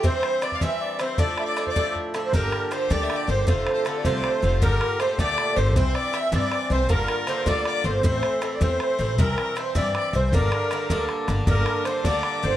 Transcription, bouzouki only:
X:1
M:6/8
L:1/8
Q:3/8=105
K:Dm
V:1 name="Bouzouki" clef=bass
[G,,E,CE]2 [G,,E,CE] [G,,E,CE]2 [G,,E,CE] | [A,,F,DE]2 [A,,F,DE] [A,,F,DE]2 [A,,F,DE] | [K:Gdor] [B,,D,DG]2 [B,,D,DG] [B,,D,DG]2 [B,,D,DG] | [C,D,A,F]2 [C,D,A,F] [C,D,A,F]2 [C,D,A,F] |
[B,,D,G]2 [B,,D,A,G] [B,,D,A,G]2 [B,,D,A,G] | [G,,E,CE]2 [G,,E,CE] [G,,E,CE]2 [G,,E,CE] | [G,,D,B,F]2 [G,,D,B,F] [G,,D,B,F]2 [G,,D,B,F] | [A,,E,CE]2 [A,,E,CE] [A,,E,CE]2 [A,,E,CE] |
[G,,E,CE]2 [G,,E,CE] [G,,E,CE]2 [G,,E,CE] | [G,,D,B,D]2 [G,,D,B,D] [G,,D,B,D]2 [G,,D,B,D] | [G,,D,B,D]2 [G,,D,B,D] [G,,D,B,D]2 [G,,D,B,D] |]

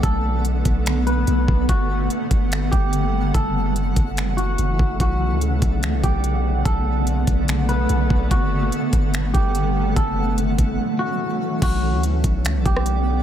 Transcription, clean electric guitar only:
X:1
M:4/4
L:1/8
Q:1/4=145
K:Bm
V:1 name="Clean electric guitar"
A2 z3 B3 | F2 z3 G3 | A2 z3 F3 | F2 z3 G3 |
A2 z3 B3 | F2 z3 G3 | A2 z3 F3 | F2 z3 G3 |]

